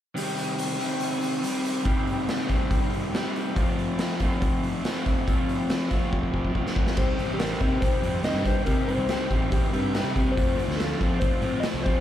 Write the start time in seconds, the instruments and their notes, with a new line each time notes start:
0.15 overdriven electric guitar C3 D#3 G3 C4 G4, open hi-hat
0.37 open hi-hat
0.58 open hi-hat
0.78 overdriven electric guitar C3 D#3 G3 C4 G4, open hi-hat
1.00 open hi-hat
1.21 open hi-hat
1.42 overdriven electric guitar C3 D#3 G3 C4 G4, open hi-hat
1.65 open hi-hat
1.83 overdriven electric guitar C3 D#3 G3 C4, kick, open hi-hat
1.88 overdriven electric guitar G4
2.07 open hi-hat
2.29 snare, open hi-hat
2.48 overdriven electric guitar C3 D#3 G3 C4 G4, kick, open hi-hat
2.71 kick, open hi-hat
2.94 open hi-hat
3.12 overdriven electric guitar C3 D#3 G3 C4 G4, snare, open hi-hat
3.36 open hi-hat
3.54 overdriven electric guitar F3 A3 C4 F4, kick, open hi-hat
3.79 open hi-hat
3.99 snare, open hi-hat
4.20 overdriven electric guitar F3 A3 C4 F4, kick, open hi-hat
4.42 kick, open hi-hat
4.63 open hi-hat
4.84 overdriven electric guitar F3 A3 C4 F4, snare, open hi-hat
5.06 kick, open hi-hat
5.26 overdriven electric guitar F3 A3 C4 F4, kick, open hi-hat
5.49 open hi-hat
5.70 snare, open hi-hat
5.90 overdriven electric guitar F3 A3 C4 F4, kick, open hi-hat
6.13 kick
6.23 kick
6.34 kick
6.44 kick
6.53 overdriven electric guitar F3 A3 C4, kick
6.57 overdriven electric guitar F4
6.67 snare
6.76 kick
6.87 snare
6.96 picked electric bass C2, overdriven electric guitar C3 D#3 G3 C4 G4, electric slide guitar C5, kick, crash
7.18 overdriven electric guitar C3 D#3 G3 C4 G4, open hi-hat
7.28 picked electric bass A1
7.34 electric slide guitar G4
7.38 overdriven electric guitar C3 D#3 G3 C4 G4, electric slide guitar A#4, snare, open hi-hat
7.60 overdriven electric guitar C3 D#3 G3 C4 G4, picked electric bass C3, kick, open hi-hat
7.81 overdriven electric guitar C3 D#3 G3 C4 G4, electric slide guitar C5, kick, open hi-hat
8.01 picked electric bass F2, overdriven electric guitar C3 D#3 G3 C4 G4, open hi-hat
8.22 overdriven electric guitar C3 D#3 G3 C4 G4, electric slide guitar D#5, snare, open hi-hat
8.34 picked electric bass G2
8.44 overdriven electric guitar C3 D#3 G3 C4 G4, electric slide guitar C5, kick, open hi-hat
8.64 overdriven electric guitar C3 D#3 G3 C4 G4, picked electric bass C3, electric slide guitar A#4, kick, open hi-hat
8.85 overdriven electric guitar C3 D#3 G3 C4 G4, electric slide guitar C5, open hi-hat
8.97 picked electric bass C2
9.07 overdriven electric guitar C3 D#3 G3 C4 G4, snare, open hi-hat
9.29 picked electric bass A1, overdriven electric guitar C3 D#3 G3 C4 G4, kick, open hi-hat
9.50 overdriven electric guitar C3 D#3 G3 C4 G4, kick, open hi-hat
9.70 picked electric bass G2, overdriven electric guitar C3 D#3 G3 C4 G4, electric slide guitar A#4, open hi-hat
9.93 overdriven electric guitar C3 D#3 G3 C4 G4, snare, open hi-hat
10.04 picked electric bass C3
10.14 overdriven electric guitar C3 D#3 G3 C4 G4, kick, open hi-hat
10.32 overdriven electric guitar F3 A3, electric slide guitar C5
10.36 picked electric bass F2, overdriven electric guitar C4 F4, kick, open hi-hat
10.56 overdriven electric guitar F3 A3 C4 F4, open hi-hat
10.67 picked electric bass D2, snare
10.77 overdriven electric guitar F3 A3 C4 F4, electric slide guitar A4, snare, open hi-hat
11.00 overdriven electric guitar F3 A3 C4 F4, picked electric bass F3, kick, open hi-hat
11.20 overdriven electric guitar F3 A3 C4 F4, electric slide guitar C5, kick, open hi-hat
11.41 picked electric bass A2, overdriven electric guitar F3 A3 C4 F4, open hi-hat
11.60 overdriven electric guitar F3 A3, electric slide guitar D#5, snare, open hi-hat
11.64 overdriven electric guitar C4 F4
11.74 picked electric bass C2
11.83 overdriven electric guitar F3 A3 C4 F4, electric slide guitar C5, kick, open hi-hat